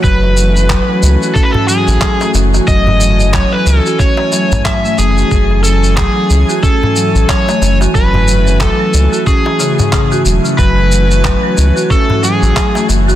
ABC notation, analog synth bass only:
X:1
M:4/4
L:1/16
Q:"Swing 16ths" 1/4=91
K:F#m
V:1 name="Analog synth bass" clef=bass
F,,,4- F,,, z C,, z4 A,,, z2 F,,, z | F,,,4- F,,, z C,, z4 A,,, z2 F,,, z | F,,,4- F,,, z C,, z4 A,,, z2 F,,, z | F,,,4- F,,, z C,, z6 z E,,, z |
F,,,4- F,,, z C,, z4 A,,, z2 F,,, z |]